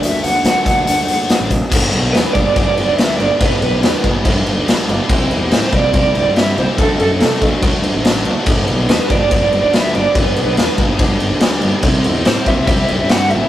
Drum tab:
CC |--------|xxxxxxxx|xxxxxxxx|xxxxxxxx|
HH |xxxxxxxx|--------|--------|--------|
SD |--o---o-|--o---o-|--o---o-|--o---o-|
BD |---o---o|o--oo---|o--oo---|o--oo---|

CC |xxxxxxxx|xxxxxxxx|xxxxxxxx|xxxxxxxx|
HH |--------|--------|--------|--------|
SD |--o---o-|--o---o-|--o---o-|--o---o-|
BD |o--oo---|o--oo---|o--oo---|o--oo---|